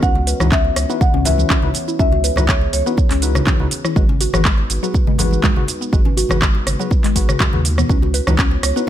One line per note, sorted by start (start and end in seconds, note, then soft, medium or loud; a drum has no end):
0.00 0.34 C#2 loud
0.00 3.92 E3 medium
0.00 3.92 B3 medium
0.00 3.92 C#4 medium
0.00 0.14 C#4 loud
0.00 0.10 D#4 medium
0.00 0.10 E4 medium
0.00 1.95 F#4 medium
0.00 0.10 F#4 medium
0.00 3.92 C#5 medium
0.00 0.48 F#5 loud
0.00 kick loud
0.00 shaker soft
0.15 0.26 F#4 medium
0.15 muted conga medium
0.15 high conga medium
0.27 0.40 B4 loud
0.27 open hi-hat medium
0.27 shaker medium
0.40 0.71 C#2 loud
0.40 0.47 D#4 medium
0.40 0.47 E4 medium
0.40 0.47 F#4 medium
0.40 0.47 B4 medium
0.40 cross-stick medium
0.40 mid tom loud
0.40 low conga medium
0.40 shaker medium
0.52 0.59 C#4 loud
0.52 0.98 E5 loud
0.52 kick loud
0.52 clap loud
0.52 shaker soft
0.65 muted conga soft
0.76 0.86 C#2 medium
0.76 cross-stick medium
0.76 open hi-hat medium
0.76 shaker medium
0.90 0.96 B3 loud
0.90 1.00 D#4 medium
0.90 1.00 E4 medium
0.90 1.00 F#4 medium
0.90 1.00 B4 medium
0.90 shaker medium
1.01 1.12 F#5 loud
1.01 kick loud
1.01 muted conga medium
1.01 high conga medium
1.01 shaker soft
1.14 1.45 C#2 loud
1.14 1.24 C#4 loud
1.14 high conga loud
1.25 1.60 C#4 medium
1.25 1.60 E4 medium
1.25 1.60 F#4 medium
1.25 1.60 B4 loud
1.25 1.98 E5 loud
1.25 open hi-hat medium
1.25 low conga loud
1.25 shaker loud
1.38 mid tom loud
1.38 muted conga soft
1.38 shaker medium
1.50 1.57 C#4 loud
1.50 kick loud
1.50 clap loud
1.50 low conga loud
1.50 shaker soft
1.62 1.71 C#2 loud
1.62 1.70 D#4 medium
1.62 1.70 E4 medium
1.62 1.70 F#4 medium
1.62 1.70 B4 loud
1.62 high conga medium
1.74 open hi-hat medium
1.74 muted conga medium
1.74 shaker medium
1.88 1.98 E4 medium
1.88 shaker medium
1.99 2.31 C#2 loud
1.99 2.11 C#4 loud
1.99 2.07 D#4 medium
1.99 2.07 E4 medium
1.99 2.07 F#4 medium
1.99 3.94 G#4 medium
1.99 2.07 B4 medium
1.99 2.50 E5 loud
1.99 kick loud
1.99 shaker soft
2.12 2.23 F#4 medium
2.12 muted conga soft
2.12 high conga medium
2.24 2.36 B4 loud
2.24 open hi-hat medium
2.24 shaker medium
2.36 2.68 C#2 loud
2.36 2.44 D#4 medium
2.36 2.44 E4 medium
2.36 2.44 F#4 medium
2.36 2.44 B4 loud
2.36 cross-stick medium
2.36 mid tom loud
2.36 low conga medium
2.36 shaker medium
2.48 2.56 C#4 loud
2.48 2.71 C#5 medium
2.48 kick loud
2.48 clap loud
2.48 shaker soft
2.61 muted conga soft
2.73 2.82 C#2 medium
2.73 3.68 C#5 medium
2.73 open hi-hat medium
2.73 shaker medium
2.86 2.93 B3 loud
2.86 2.97 D#4 medium
2.86 2.97 E4 medium
2.86 2.97 F#4 medium
2.86 2.97 B4 medium
2.86 shaker medium
2.97 kick loud
2.97 muted conga medium
2.97 shaker soft
3.11 3.41 C#2 loud
3.11 3.21 C#4 loud
3.11 clap soft
3.11 open hi-hat medium
3.22 3.57 D#4 medium
3.22 3.57 E4 medium
3.22 3.57 F#4 medium
3.22 3.57 B4 loud
3.22 open hi-hat medium
3.22 shaker medium
3.35 cross-stick medium
3.35 muted conga soft
3.35 high conga loud
3.35 shaker medium
3.46 3.54 C#4 loud
3.46 kick loud
3.46 clap loud
3.46 low conga loud
3.46 shaker soft
3.60 3.68 C#2 loud
3.60 3.67 D#4 medium
3.60 3.67 E4 medium
3.60 3.67 F#4 medium
3.60 3.67 B4 loud
3.60 high conga medium
3.71 open hi-hat medium
3.71 muted conga soft
3.71 shaker medium
3.85 3.95 E4 medium
3.85 cross-stick medium
3.85 mid tom loud
3.85 shaker medium
3.96 4.28 G#1 loud
3.96 7.86 G#3 medium
3.96 4.08 G#3 loud
3.96 8.89 B3 medium
3.96 7.86 D#4 medium
3.96 8.89 F#4 medium
3.96 4.04 F#4 medium
3.96 4.04 G#4 medium
3.96 7.86 B4 medium
3.96 4.04 B4 medium
3.96 kick loud
3.96 shaker soft
4.09 4.20 C#4 medium
4.09 muted conga soft
4.09 high conga medium
4.21 4.33 F#4 loud
4.21 open hi-hat loud
4.21 shaker medium
4.33 4.64 G#1 loud
4.33 4.41 F#4 medium
4.33 4.40 G#4 medium
4.33 4.40 B4 loud
4.33 cross-stick medium
4.33 mid tom loud
4.33 low conga loud
4.33 shaker medium
4.45 4.52 G#3 loud
4.45 kick loud
4.45 clap loud
4.45 shaker soft
4.58 muted conga soft
4.70 4.79 G#1 medium
4.70 open hi-hat medium
4.70 shaker medium
4.83 4.89 F#3 loud
4.83 4.94 F#4 medium
4.83 4.94 G#4 medium
4.83 4.94 B4 medium
4.83 shaker medium
4.94 kick loud
4.94 muted conga medium
4.94 high conga medium
4.94 shaker soft
5.07 5.38 G#1 loud
5.07 5.18 G#3 loud
5.07 high conga loud
5.19 5.54 F#4 medium
5.19 5.54 G#4 medium
5.19 5.54 B4 loud
5.19 open hi-hat medium
5.19 low conga loud
5.19 shaker medium
5.31 mid tom loud
5.31 muted conga soft
5.31 shaker medium
5.43 5.51 G#3 loud
5.43 kick loud
5.43 clap loud
5.43 low conga loud
5.43 shaker soft
5.56 5.65 G#1 loud
5.56 5.64 F#4 medium
5.56 5.64 G#4 medium
5.56 5.64 B4 loud
5.56 high conga medium
5.68 open hi-hat medium
5.68 muted conga medium
5.68 shaker medium
5.81 5.92 B3 medium
5.81 shaker medium
5.93 6.24 G#1 loud
5.93 6.05 G#3 loud
5.93 6.01 F#4 medium
5.93 6.00 G#4 medium
5.93 6.00 B4 medium
5.93 kick loud
5.93 shaker soft
6.05 6.16 C#4 medium
6.05 muted conga medium
6.05 high conga medium
6.17 6.30 F#4 loud
6.17 open hi-hat medium
6.17 shaker medium
6.29 6.61 G#1 loud
6.29 6.37 F#4 medium
6.29 6.37 G#4 medium
6.29 6.37 B4 medium
6.29 cross-stick loud
6.29 mid tom loud
6.29 high conga medium
6.29 low conga medium
6.29 shaker medium
6.42 6.49 G#3 loud
6.42 kick loud
6.42 clap loud
6.42 shaker soft
6.55 muted conga soft
6.67 6.76 G#1 medium
6.67 cross-stick medium
6.67 open hi-hat medium
6.67 high conga medium
6.67 shaker medium
6.79 6.86 F#3 loud
6.79 6.90 F#4 medium
6.79 6.90 G#4 medium
6.79 6.90 B4 medium
6.79 shaker medium
6.91 kick loud
6.91 muted conga medium
6.91 shaker soft
7.04 7.35 G#1 loud
7.04 7.14 G#3 loud
7.04 clap soft
7.04 open hi-hat medium
7.16 7.50 F#4 medium
7.16 7.50 G#4 medium
7.16 7.50 B4 loud
7.16 kick medium
7.16 open hi-hat loud
7.16 high tom medium
7.16 shaker medium
7.29 cross-stick medium
7.29 muted conga soft
7.29 high conga loud
7.29 shaker medium
7.40 7.47 G#3 loud
7.40 kick loud
7.40 clap loud
7.40 mid tom medium
7.40 low conga loud
7.40 shaker soft
7.53 7.84 D#2 loud
7.53 7.60 F#4 medium
7.53 7.60 G#4 medium
7.53 7.60 B4 medium
7.53 mid tom medium
7.53 high conga loud
7.65 open hi-hat medium
7.65 muted conga medium
7.65 shaker medium
7.78 7.88 B3 medium
7.78 cross-stick medium
7.78 mid tom medium
7.78 shaker medium
7.89 8.21 C#2 loud
7.89 8.89 C#4 medium
7.89 8.01 C#4 loud
7.89 7.97 D#4 medium
7.89 8.89 E4 medium
7.89 7.97 E4 medium
7.89 7.97 F#4 medium
7.89 7.97 B4 medium
7.89 8.89 C#5 medium
7.89 kick loud
7.89 shaker soft
8.02 8.13 F#4 medium
8.02 muted conga medium
8.02 high conga medium
8.14 8.26 B4 loud
8.14 open hi-hat medium
8.14 shaker medium
8.27 8.58 C#2 loud
8.27 8.34 D#4 medium
8.27 8.34 E4 medium
8.27 8.34 F#4 medium
8.27 8.34 B4 loud
8.27 cross-stick loud
8.27 mid tom medium
8.27 low conga loud
8.27 shaker medium
8.38 8.46 C#4 loud
8.38 kick loud
8.38 clap loud
8.38 shaker soft
8.51 muted conga soft
8.63 8.72 C#2 medium
8.63 8.74 C#5 medium
8.63 cross-stick loud
8.63 open hi-hat loud
8.63 shaker loud
8.76 8.82 B3 loud
8.76 8.87 D#4 medium
8.76 8.87 E4 medium
8.76 8.87 F#4 medium
8.76 8.87 B4 medium
8.76 shaker medium